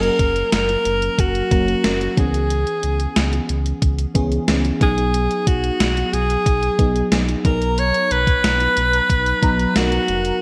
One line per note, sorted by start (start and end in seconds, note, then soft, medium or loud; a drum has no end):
0.00 0.10 F#1 loud
0.00 1.11 F#3 medium
0.00 1.11 A#3 medium
0.00 1.11 C#4 medium
0.00 1.15 A#4 medium
0.00 0.53 A#4 loud
0.00 closed hi-hat soft
0.19 0.43 F#1 loud
0.19 kick medium
0.19 closed hi-hat medium
0.36 closed hi-hat soft
0.52 0.76 F#1 loud
0.52 1.22 A#4 medium
0.52 snare medium
0.52 closed hi-hat medium
0.69 closed hi-hat soft
0.85 1.09 F#1 medium
0.85 closed hi-hat medium
1.02 closed hi-hat soft
1.18 1.42 F#1 loud
1.18 2.21 F#4 medium
1.18 kick medium
1.18 closed hi-hat medium
1.35 closed hi-hat soft
1.51 1.75 F#1 loud
1.51 1.82 F#3 medium
1.51 1.82 A#3 medium
1.51 1.83 C#4 medium
1.51 1.83 A#4 medium
1.51 kick medium
1.51 closed hi-hat medium
1.68 closed hi-hat soft
1.84 2.08 F#1 medium
1.84 2.17 F#3 medium
1.84 2.17 A#3 medium
1.84 2.16 C#4 medium
1.84 2.18 A#4 medium
1.84 snare loud
1.84 closed hi-hat medium
2.01 closed hi-hat soft
2.17 2.65 C#2 loud
2.17 3.42 E3 medium
2.17 3.42 B3 medium
2.17 3.42 C#4 medium
2.17 3.42 G#4 medium
2.17 3.50 G#4 medium
2.17 kick medium
2.17 closed hi-hat medium
2.34 closed hi-hat medium
2.50 closed hi-hat medium
2.67 closed hi-hat soft
2.83 3.07 C#2 medium
2.83 closed hi-hat medium
3.00 closed hi-hat soft
3.16 3.40 C#2 loud
3.16 snare loud
3.16 closed hi-hat medium
3.33 closed hi-hat soft
3.49 3.73 C#2 medium
3.49 closed hi-hat medium
3.66 closed hi-hat soft
3.82 4.06 C#2 loud
3.82 kick medium
3.82 closed hi-hat medium
3.99 closed hi-hat soft
4.14 4.39 C#2 medium
4.14 4.46 E3 medium
4.14 4.46 B3 medium
4.14 4.46 C#4 medium
4.14 4.47 G#4 medium
4.14 kick medium
4.14 closed hi-hat medium
4.32 closed hi-hat soft
4.48 4.72 C#2 loud
4.48 4.81 E3 medium
4.48 4.80 B3 medium
4.48 4.81 C#4 medium
4.48 4.81 G#4 medium
4.48 snare loud
4.48 closed hi-hat medium
4.65 closed hi-hat soft
4.80 5.29 B1 loud
4.80 6.05 F#3 medium
4.80 6.06 B3 medium
4.80 6.06 D#4 medium
4.80 6.06 G#4 medium
4.80 5.49 G#4 loud
4.80 kick medium
4.80 closed hi-hat medium
4.98 closed hi-hat soft
5.14 closed hi-hat medium
5.31 closed hi-hat soft
5.47 5.71 B1 medium
5.47 6.15 F#4 medium
5.47 kick medium
5.47 closed hi-hat medium
5.64 closed hi-hat soft
5.80 6.04 B1 loud
5.80 snare medium
5.80 closed hi-hat medium
5.97 closed hi-hat soft
6.13 6.37 B1 medium
6.13 7.12 G#4 medium
6.13 closed hi-hat medium
6.30 closed hi-hat soft
6.46 6.70 B1 loud
6.46 kick medium
6.46 closed hi-hat medium
6.63 closed hi-hat soft
6.78 7.03 B1 loud
6.78 7.10 F#3 medium
6.78 7.10 B3 medium
6.78 7.10 D#4 medium
6.78 7.10 G#4 medium
6.78 kick medium
6.78 closed hi-hat medium
6.96 closed hi-hat soft
7.11 7.36 B1 medium
7.11 7.43 F#3 medium
7.11 7.44 B3 medium
7.11 7.44 D#4 medium
7.11 7.45 G#4 medium
7.11 snare loud
7.11 closed hi-hat medium
7.29 closed hi-hat soft
7.45 7.92 B1 loud
7.45 8.69 F#3 medium
7.45 8.70 B3 medium
7.45 8.70 D#4 medium
7.45 7.81 A#4 medium
7.45 8.70 A#5 medium
7.45 kick loud
7.45 closed hi-hat medium
7.62 closed hi-hat soft
7.78 8.13 C#5 loud
7.78 closed hi-hat medium
7.94 closed hi-hat soft
8.11 8.35 B1 medium
8.11 9.76 B4 loud
8.11 closed hi-hat medium
8.27 kick medium
8.27 closed hi-hat soft
8.44 8.68 B1 loud
8.44 snare medium
8.44 closed hi-hat medium
8.60 closed hi-hat soft
8.77 9.01 B1 medium
8.77 closed hi-hat medium
8.93 closed hi-hat medium
9.10 9.33 B1 loud
9.10 kick medium
9.10 closed hi-hat medium
9.26 closed hi-hat soft
9.42 9.66 B1 loud
9.42 9.73 F#3 medium
9.42 9.74 B3 medium
9.42 9.74 D#4 medium
9.42 9.74 A#5 medium
9.42 kick medium
9.42 closed hi-hat medium
9.59 closed hi-hat soft
9.75 9.99 B1 loud
9.75 10.38 F#3 medium
9.75 10.38 B3 medium
9.75 10.38 D#4 medium
9.75 10.42 F#4 medium
9.75 10.38 A#4 medium
9.75 snare loud
9.75 closed hi-hat medium
9.92 closed hi-hat soft
10.08 10.32 F1 medium
10.08 closed hi-hat medium
10.25 closed hi-hat soft